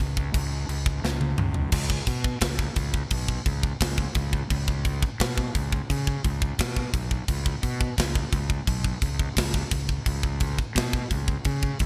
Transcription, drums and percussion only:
0.00 kick medium
0.00 crash medium
0.17 kick medium
0.34 kick loud
0.34 crash medium
0.69 crash medium
0.86 kick medium
1.05 snare medium
1.21 high tom medium
1.38 mid tom loud
1.54 floor tom medium
1.72 kick medium
1.72 crash loud
1.72 crash medium
1.90 kick medium
2.07 kick medium
2.07 crash medium
2.24 kick loud
2.41 kick medium
2.41 snare loud
2.41 crash medium
2.59 kick medium
2.76 kick medium
2.76 crash medium
2.94 kick medium
3.10 kick medium
3.10 crash medium
3.28 kick medium
3.46 kick medium
3.46 crash medium
3.63 kick medium
3.81 kick medium
3.81 snare loud
3.81 crash medium
3.98 kick medium
4.15 kick medium
4.15 crash medium
4.33 kick medium
4.50 kick medium
4.50 crash medium
4.68 kick medium
4.85 kick medium
4.85 crash medium
5.03 kick loud
5.20 kick medium
5.20 snare loud
5.20 crash medium
5.38 kick loud
5.55 kick medium
5.55 crash medium
5.72 kick loud
5.90 kick medium
5.90 crash medium
6.07 kick medium
6.25 kick medium
6.25 crash medium
6.42 kick medium
6.59 kick loud
6.59 snare loud
6.59 crash medium
6.76 kick medium
6.94 kick medium
6.94 crash medium
7.11 kick medium
7.28 kick medium
7.28 crash medium
7.46 kick medium
7.63 kick medium
7.63 crash medium
7.81 kick loud
7.98 kick medium
7.98 snare loud
7.98 crash medium
8.15 kick medium
8.33 kick medium
8.33 crash medium
8.50 kick medium
8.67 kick medium
8.67 crash medium
8.84 kick medium
9.02 kick medium
9.02 crash medium
9.19 kick medium
9.37 kick medium
9.37 snare loud
9.37 crash loud
9.54 kick medium
9.71 kick loud
9.71 crash medium
9.89 kick medium
10.06 kick medium
10.06 crash medium
10.23 kick medium
10.40 kick medium
10.40 crash medium
10.59 kick medium
10.76 kick medium
10.76 snare loud
10.76 crash medium
10.93 kick medium
11.11 kick medium
11.11 crash medium
11.28 kick medium
11.45 kick medium
11.45 crash medium
11.63 kick medium
11.79 kick medium
11.79 crash medium

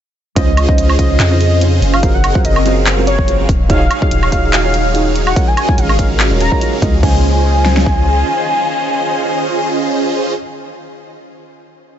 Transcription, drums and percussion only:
0.36 kick loud
0.36 closed hi-hat medium
0.57 closed hi-hat medium
0.57 high woodblock medium
0.69 kick loud
0.78 closed hi-hat medium
0.90 high woodblock medium
0.99 kick medium
0.99 closed hi-hat medium
1.20 clap loud
1.20 closed hi-hat medium
1.41 closed hi-hat medium
1.61 closed hi-hat medium
1.82 closed hi-hat medium
1.94 high woodblock medium
2.03 kick loud
2.03 closed hi-hat medium
2.24 closed hi-hat medium
2.24 high woodblock medium
2.35 kick loud
2.45 closed hi-hat medium
2.56 high woodblock medium
2.66 closed hi-hat medium
2.86 clap loud
2.86 closed hi-hat medium
3.07 closed hi-hat medium
3.19 kick medium
3.28 closed hi-hat medium
3.49 kick loud
3.49 closed hi-hat medium
3.70 kick loud
3.70 closed hi-hat medium
3.91 closed hi-hat medium
3.91 high woodblock medium
4.02 kick loud
4.11 closed hi-hat medium
4.23 high woodblock medium
4.32 kick medium
4.32 closed hi-hat medium
4.53 clap loud
4.53 closed hi-hat medium
4.74 closed hi-hat medium
4.95 closed hi-hat medium
5.16 closed hi-hat medium
5.27 high woodblock medium
5.36 kick loud
5.36 closed hi-hat medium
5.57 closed hi-hat medium
5.57 high woodblock medium
5.69 kick loud
5.78 closed hi-hat medium
5.89 high woodblock medium
5.99 kick medium
5.99 closed hi-hat medium
6.20 clap loud
6.20 closed hi-hat medium
6.41 closed hi-hat medium
6.52 kick medium
6.61 closed hi-hat medium
6.82 kick loud
6.82 closed hi-hat medium
7.03 kick loud
7.03 crash medium
7.66 snare medium
7.77 snare medium
7.86 kick medium

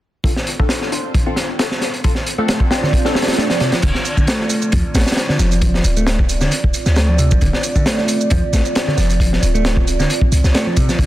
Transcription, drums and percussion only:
0.24 kick medium
0.24 closed hi-hat medium
0.36 snare soft
0.47 closed hi-hat medium
0.60 kick medium
0.69 snare loud
0.69 closed hi-hat medium
0.82 snare soft
0.92 closed hi-hat medium
1.14 kick loud
1.14 closed hi-hat medium
1.36 snare soft
1.36 closed hi-hat medium
1.59 snare loud
1.59 closed hi-hat medium
1.71 snare soft
1.81 snare soft
1.81 closed hi-hat medium
1.94 closed hi-hat soft
2.04 kick loud
2.04 closed hi-hat medium
2.15 snare soft
2.26 closed hi-hat medium
2.48 snare medium
2.48 closed hi-hat medium
2.60 kick medium
2.71 snare loud
2.71 closed hi-hat medium
2.83 snare soft
2.93 kick medium
2.93 closed hi-hat medium
3.05 snare soft
3.15 snare medium
3.15 closed hi-hat medium
3.22 snare medium
3.22 closed hi-hat medium
3.28 snare medium
3.28 closed hi-hat medium
3.33 snare medium
3.33 closed hi-hat medium
3.38 snare loud
3.38 closed hi-hat medium
3.50 snare loud
3.50 closed hi-hat medium
3.60 snare medium
3.60 closed hi-hat medium
3.72 snare medium
3.72 closed hi-hat medium
3.82 kick loud
3.82 closed hi-hat medium
3.82 crash medium
3.82 shaker soft
3.95 snare medium
4.05 closed hi-hat medium
4.05 shaker medium
4.17 kick medium
4.17 shaker soft
4.27 snare loud
4.27 closed hi-hat medium
4.27 shaker soft
4.41 snare soft
4.50 closed hi-hat medium
4.50 shaker medium
4.62 shaker soft
4.72 kick loud
4.72 closed hi-hat medium
4.72 shaker soft
4.95 snare medium
4.95 closed hi-hat medium
4.95 shaker medium
5.00 snare medium
5.00 closed hi-hat medium
5.07 snare medium
5.07 closed hi-hat medium
5.07 shaker soft
5.12 snare medium
5.12 closed hi-hat medium
5.17 snare loud
5.17 closed hi-hat medium
5.17 shaker soft
5.29 snare medium
5.39 snare soft
5.39 closed hi-hat medium
5.39 shaker medium
5.51 closed hi-hat soft
5.51 shaker soft
5.61 kick loud
5.61 closed hi-hat medium
5.61 shaker soft
5.74 snare soft
5.84 closed hi-hat medium
5.84 shaker medium
5.97 shaker soft
6.07 snare loud
6.07 closed hi-hat medium
6.07 shaker soft
6.19 kick medium
6.29 closed hi-hat medium
6.29 shaker medium
6.41 snare soft
6.41 shaker soft
6.51 closed hi-hat medium
6.51 shaker soft
6.64 kick medium
6.74 closed hi-hat medium
6.74 shaker medium
6.86 snare soft
6.86 shaker soft
6.96 snare loud
6.96 closed hi-hat medium
6.96 shaker soft
7.19 closed hi-hat medium
7.19 shaker medium
7.31 kick medium
7.31 shaker soft
7.41 kick loud
7.41 closed hi-hat medium
7.41 shaker soft
7.53 snare soft
7.63 closed hi-hat medium
7.63 shaker medium
7.76 kick medium
7.76 shaker soft
7.86 snare loud
7.86 closed hi-hat medium
7.86 shaker soft
7.98 snare soft
8.08 closed hi-hat medium
8.08 shaker medium
8.21 shaker soft
8.30 kick loud
8.30 closed hi-hat medium
8.30 shaker soft
8.53 snare medium
8.53 closed hi-hat medium
8.53 shaker medium
8.65 shaker soft
8.75 snare loud
8.75 closed hi-hat medium
8.75 shaker soft
8.88 snare soft
8.98 snare soft
8.98 closed hi-hat medium
8.98 shaker medium
9.09 closed hi-hat soft
9.09 shaker soft
9.20 kick loud
9.20 closed hi-hat medium
9.20 shaker soft
9.33 snare soft
9.43 closed hi-hat medium
9.43 shaker medium
9.55 shaker soft
9.65 snare loud
9.65 closed hi-hat medium
9.65 shaker soft
9.77 kick medium
9.87 closed hi-hat medium
9.87 shaker medium
10.00 snare soft
10.00 shaker soft
10.10 closed hi-hat medium
10.10 shaker soft
10.21 kick medium
10.32 closed hi-hat medium
10.32 shaker medium
10.44 snare soft
10.44 shaker soft
10.55 snare loud
10.55 closed hi-hat medium
10.55 shaker soft
10.77 kick loud
10.77 closed hi-hat medium
10.77 shaker medium
10.89 snare soft
10.89 shaker soft
10.99 kick loud
10.99 closed hi-hat medium
10.99 shaker soft

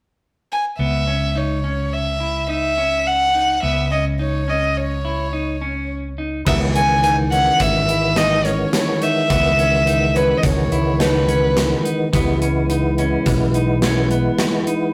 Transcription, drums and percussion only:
6.46 kick medium
6.46 crash medium
6.75 closed hi-hat medium
7.04 closed hi-hat medium
7.32 closed hi-hat medium
7.60 kick medium
7.60 closed hi-hat medium
7.89 closed hi-hat medium
8.16 snare medium
8.16 closed hi-hat medium
8.45 snare soft
8.45 closed hi-hat soft
8.73 snare medium
8.73 closed hi-hat medium
9.02 closed hi-hat medium
9.30 kick loud
9.30 closed hi-hat medium
9.59 closed hi-hat soft
9.87 closed hi-hat medium
10.16 closed hi-hat soft
10.43 kick medium
10.43 closed hi-hat medium
10.72 closed hi-hat medium
11.00 snare medium
11.00 closed hi-hat medium
11.29 closed hi-hat medium
11.57 snare medium
11.57 closed hi-hat medium
11.85 closed hi-hat medium
12.13 kick loud
12.13 closed hi-hat medium
12.42 closed hi-hat medium
12.70 closed hi-hat medium
12.98 closed hi-hat medium
13.26 kick medium
13.26 closed hi-hat medium
13.54 closed hi-hat medium
13.82 snare medium
13.82 closed hi-hat medium
14.11 closed hi-hat soft
14.39 snare medium
14.39 closed hi-hat medium
14.67 closed hi-hat medium

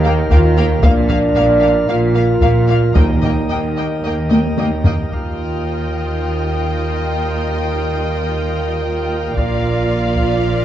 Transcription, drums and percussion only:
0.30 taiko medium
0.83 taiko loud
1.10 taiko low-mid soft
2.41 taiko medium
2.95 taiko medium
3.23 taiko low-mid soft
4.31 taiko high medium
4.58 taiko high medium
4.84 taiko low medium
5.11 taiko soft
9.37 taiko medium
10.16 taiko soft

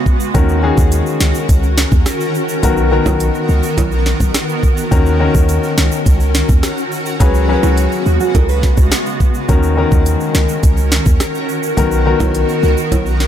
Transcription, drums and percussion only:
0.06 kick medium
0.06 shaker medium
0.20 shaker medium
0.35 kick loud
0.35 closed hi-hat medium
0.35 shaker medium
0.49 shaker medium
0.78 kick loud
0.78 shaker medium
0.92 closed hi-hat medium
0.92 shaker medium
1.06 shaker medium
1.20 snare loud
1.20 shaker medium
1.35 shaker medium
1.49 kick loud
1.49 closed hi-hat medium
1.49 shaker medium
1.63 shaker medium
1.77 snare loud
1.77 shaker medium
1.92 kick loud
1.92 shaker medium
2.06 cross-stick medium
2.06 snare medium
2.06 closed hi-hat medium
2.06 shaker medium
2.21 shaker medium
2.35 shaker medium
2.49 shaker medium
2.63 kick loud
2.63 closed hi-hat medium
2.63 shaker medium
2.77 shaker medium
3.06 kick medium
3.06 high timbale medium
3.06 shaker medium
3.20 closed hi-hat medium
3.20 shaker medium
3.35 shaker medium
3.49 shaker medium
3.63 shaker medium
3.78 kick loud
3.78 closed hi-hat medium
3.78 high timbale medium
3.78 shaker medium
3.92 shaker medium
4.06 snare medium
4.06 shaker medium
4.20 kick loud
4.20 shaker medium
4.34 cross-stick medium
4.34 snare loud
4.34 closed hi-hat medium
4.34 shaker medium
4.49 shaker medium
4.63 kick loud
4.63 shaker medium
4.77 shaker medium
4.92 kick loud
4.92 closed hi-hat medium
4.92 shaker medium
5.06 shaker medium
5.35 kick loud
5.35 shaker medium
5.49 closed hi-hat medium
5.49 shaker medium
5.63 shaker medium
5.77 snare loud
5.77 shaker medium
5.92 shaker medium
6.06 kick loud
6.06 closed hi-hat medium
6.06 shaker medium
6.20 shaker medium
6.35 snare loud
6.35 shaker medium
6.49 kick loud
6.49 shaker medium
6.63 cross-stick medium
6.63 snare medium
6.63 closed hi-hat medium
6.63 shaker medium
6.78 shaker medium
6.92 shaker medium
7.06 shaker medium
7.20 kick loud
7.20 closed hi-hat medium
7.20 shaker medium
7.34 shaker medium
7.63 high timbale medium
7.63 shaker medium
7.77 closed hi-hat medium
7.77 shaker medium
7.92 shaker soft
8.06 shaker medium
8.20 shaker medium
8.35 kick loud
8.35 closed hi-hat medium
8.35 high timbale medium
8.35 shaker medium
8.49 shaker soft
8.63 kick medium
8.63 snare medium
8.63 shaker soft
8.77 kick loud
8.77 shaker medium
8.92 cross-stick loud
8.92 snare loud
8.92 closed hi-hat medium
8.92 shaker medium
9.06 shaker soft
9.20 kick medium
9.20 shaker medium
9.34 shaker medium
9.49 kick loud
9.49 closed hi-hat medium
9.49 shaker medium
9.63 shaker medium
9.92 kick loud
9.92 shaker medium
10.06 closed hi-hat medium
10.06 shaker medium
10.20 shaker soft
10.35 snare loud
10.35 shaker medium
10.49 shaker medium
10.63 kick loud
10.63 closed hi-hat medium
10.63 shaker medium
10.77 shaker soft
10.91 snare loud
10.91 shaker medium
11.06 kick loud
11.06 shaker medium
11.20 cross-stick loud
11.20 snare medium
11.20 closed hi-hat medium
11.20 shaker medium
11.35 shaker soft
11.49 shaker medium
11.63 shaker medium
11.77 kick loud
11.77 closed hi-hat medium
11.77 shaker medium
11.92 shaker medium
12.20 kick loud
12.20 high timbale medium
12.20 shaker medium
12.35 closed hi-hat medium
12.35 shaker medium
12.49 shaker soft
12.63 shaker medium
12.77 shaker medium
12.92 kick loud
12.92 closed hi-hat medium
12.92 high timbale medium
12.92 shaker medium
13.06 shaker soft
13.20 snare medium
13.20 shaker medium

